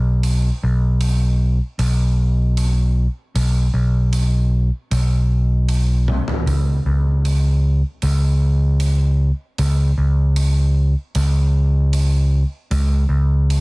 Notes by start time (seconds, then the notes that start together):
Already playing: B1
0.23 open hi-hat
0.63 B1
1.01 open hi-hat
1.79 B1, open hi-hat
2.57 open hi-hat
3.35 B1, open hi-hat
3.74 B1
4.13 open hi-hat
4.91 B1, open hi-hat
5.69 open hi-hat
6.08 high tom
6.28 floor tom
6.46 C#2, open hi-hat
6.86 C#2
7.25 open hi-hat
8.02 C#2, open hi-hat
8.80 open hi-hat
9.58 C#2, open hi-hat
9.98 C#2
10.36 open hi-hat
11.15 C#2, open hi-hat
11.93 open hi-hat
12.71 C#2, open hi-hat
13.09 C#2
13.50 open hi-hat